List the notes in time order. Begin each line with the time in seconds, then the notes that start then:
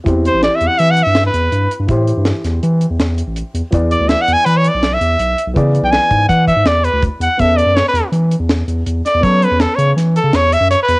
0.04 E2 E3 C4 E4 G4, kick, closed hi-hat
0.25 C5, closed hi-hat
0.34 A1
0.43 D5, snare, closed hi-hat
0.56 E5
0.61 E2, closed hi-hat
0.67 F#5
0.79 E3 E5, closed hi-hat
0.91 F#5
0.97 closed hi-hat
1.03 G2 E5
1.15 snare, closed hi-hat
1.26 B4
1.33 E2, closed hi-hat
1.52 G2, closed hi-hat
1.71 closed hi-hat
1.79 G2
1.87 A2 E3 E4 G4 C5, kick, closed hi-hat
2.08 closed hi-hat
2.17 G2
2.25 snare, closed hi-hat
2.44 E2, snare, closed hi-hat
2.63 E3, closed hi-hat
2.81 closed hi-hat
2.90 E2
2.99 E2, snare, closed hi-hat
3.18 closed hi-hat
3.27 A1
3.36 closed hi-hat
3.54 E2, closed hi-hat
3.71 E2 E3 B3 G#4 D5, kick, closed hi-hat
3.91 D5, closed hi-hat
4.00 D2
4.09 E5, snare, closed hi-hat
4.22 F#5
4.28 E2, closed hi-hat
4.33 G#5
4.46 E3 B4, closed hi-hat
4.57 C#5
4.64 D5, closed hi-hat
4.74 B1
4.83 snare, closed hi-hat
4.94 E5
5.01 E2, closed hi-hat
5.19 B1, closed hi-hat
5.38 closed hi-hat
5.47 B1
5.54 C#3 E3 B3 G#4 D5, kick, closed hi-hat
5.75 closed hi-hat
5.83 B1 G5
5.91 G#5, snare, closed hi-hat
6.11 G#2, kick, closed hi-hat
6.29 E3 F#5, kick, closed hi-hat
6.48 E5, kick, closed hi-hat
6.56 G#2
6.65 E2 D5, snare, closed hi-hat
6.84 B4, closed hi-hat
6.93 D2
7.02 kick, closed hi-hat
7.20 E2 F#5, closed hi-hat
7.37 E2 B3 C#4 A4 E5, kick, closed hi-hat
7.57 D5, closed hi-hat
7.66 F#2
7.76 C#5, snare, closed hi-hat
7.88 B4
7.93 E2, snare, closed hi-hat
8.12 E3, closed hi-hat
8.31 closed hi-hat
8.39 E2
8.49 snare, closed hi-hat
8.67 E2, closed hi-hat
8.86 E2, closed hi-hat
9.06 D5, snare, closed hi-hat
9.14 E2
9.20 F#3 B3 C#4 A4 C#5, kick, closed hi-hat
9.42 B4, closed hi-hat
9.51 E2
9.60 A4, snare, closed hi-hat
9.75 C#3 C#5, closed hi-hat
9.96 E3, snare, closed hi-hat
10.16 A4, closed hi-hat
10.24 C#3
10.33 E2 C#5, snare, closed hi-hat
10.52 E5, closed hi-hat
10.61 F#2
10.71 C#5, snare, closed hi-hat
10.83 B4
10.88 E2, closed hi-hat